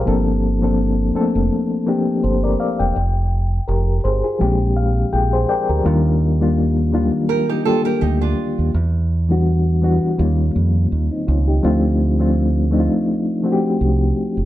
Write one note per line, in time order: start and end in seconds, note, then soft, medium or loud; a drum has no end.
0.00 0.25 G4 soft
0.00 0.24 A#4 medium
0.05 1.11 G1 medium
0.05 0.50 F3 medium
0.05 0.50 A#3 medium
0.05 0.51 C4 medium
0.05 0.51 D4 medium
0.05 0.51 A4 loud
0.62 1.05 F3 medium
0.62 1.05 A#3 medium
0.62 1.05 C4 medium
0.62 1.06 D4 medium
0.62 1.06 A4 medium
1.14 1.74 F3 medium
1.14 1.21 A3 medium
1.14 1.74 C4 medium
1.14 1.75 D4 medium
1.14 1.75 A4 medium
1.14 muted fingered electric bass stroke soft
1.21 1.77 A#3 medium
1.35 1.49 F1 medium
1.86 2.95 F3 medium
1.86 2.95 A#3 medium
1.86 2.95 C4 medium
1.86 2.95 D4 medium
1.86 2.96 G4 medium
2.23 2.55 G1 medium
2.23 2.42 A4 soft
2.23 2.42 C5 medium
2.44 2.58 A#4 medium
2.44 2.58 D5 medium
2.60 2.78 D5 medium
2.60 2.78 F5 medium
2.79 2.93 E1 medium
2.79 3.13 G5 medium
2.96 3.58 F1 medium
3.68 3.99 F1 medium
3.68 4.02 G4 soft
3.68 4.02 A#4 medium
4.04 4.21 G1 medium
4.04 4.23 G#4 medium
4.04 4.22 C5 medium
4.24 4.58 F4 soft
4.24 4.58 G#4 medium
4.39 5.03 A#1 medium
4.39 5.57 F3 medium
4.39 5.57 G#3 medium
4.39 5.58 C4 medium
4.39 4.47 C#4 medium
4.39 5.12 G4 medium
4.47 5.61 D4 medium
4.77 5.09 F5 medium
5.13 5.44 A#1 medium
5.13 5.31 F4 soft
5.13 5.31 G#4 medium
5.13 5.46 G5 medium
5.33 5.48 G#4 medium
5.33 5.47 C5 medium
5.49 5.68 A#4 medium
5.49 5.67 D5 medium
5.49 5.82 G5 medium
5.69 5.82 D2 medium
5.69 6.03 G4 medium
5.69 6.03 A#4 medium
5.84 7.09 D#2 medium
5.84 6.28 D#3 loud
5.84 6.29 G3 medium
5.84 6.29 A#3 medium
5.84 6.29 D4 medium
5.84 6.30 F4 loud
6.40 6.83 D#3 medium
6.40 6.83 G3 medium
6.40 6.84 A#3 medium
6.40 6.84 D4 medium
6.40 6.84 F4 medium
6.92 7.52 D#3 medium
6.92 6.99 F#3 medium
6.92 7.53 A#3 medium
6.92 7.53 D4 medium
6.92 7.53 F4 medium
6.99 7.56 G3 medium
7.29 7.48 G4 medium
7.29 7.48 A#4 medium
7.49 7.64 D#4 medium
7.49 7.64 G4 medium
7.65 8.73 D3 medium
7.65 8.73 G3 medium
7.65 8.74 A#3 medium
7.65 8.74 D4 medium
7.65 7.84 F4 medium
7.65 8.74 G4 medium
7.65 7.84 A4 medium
7.85 8.00 G4 medium
7.85 8.00 A#4 medium
8.01 8.33 D2 medium
8.01 8.20 D#4 medium
8.01 8.20 G4 medium
8.21 8.71 D4 medium
8.21 8.71 F4 medium
8.59 8.72 D#2 medium
8.74 9.98 E2 medium
9.29 9.72 E3 medium
9.29 9.72 G3 medium
9.29 9.73 B3 medium
9.29 9.73 D4 medium
9.29 9.73 F#4 medium
9.82 10.18 E3 medium
9.82 10.17 G3 medium
9.82 10.18 B3 medium
9.82 10.19 D4 medium
9.82 10.19 F#4 medium
10.17 10.50 D#2 medium
10.17 11.35 D#3 medium
10.17 11.36 G3 medium
10.17 11.36 A#3 medium
10.17 10.91 C#4 medium
10.17 10.91 F4 medium
10.56 10.86 F2 medium
10.92 11.08 D#2 medium
11.11 11.26 C4 soft
11.11 11.26 D#4 medium
11.27 11.59 C#2 medium
11.27 11.46 C#4 medium
11.27 11.45 F4 medium
11.48 11.81 D#4 soft
11.48 11.81 G4 medium
11.62 12.88 D2 medium
11.62 12.07 F3 medium
11.62 12.07 A3 medium
11.62 12.08 C4 medium
11.62 12.08 D4 medium
11.62 12.08 F4 loud
12.18 12.61 F3 medium
12.18 12.62 A3 medium
12.18 12.62 C4 medium
12.18 12.62 D4 medium
12.18 12.63 F4 medium
12.71 13.31 F3 medium
12.71 13.31 A3 medium
12.71 13.31 C4 medium
12.71 13.32 D4 medium
12.71 12.79 D#4 medium
12.80 13.35 F4 medium
13.43 14.45 F3 medium
13.43 14.45 A3 medium
13.43 14.45 C4 medium
13.43 14.45 D4 medium
13.43 13.51 F#4 medium
13.52 14.45 G4 medium
13.81 14.11 C2 medium
14.37 14.45 F#1 medium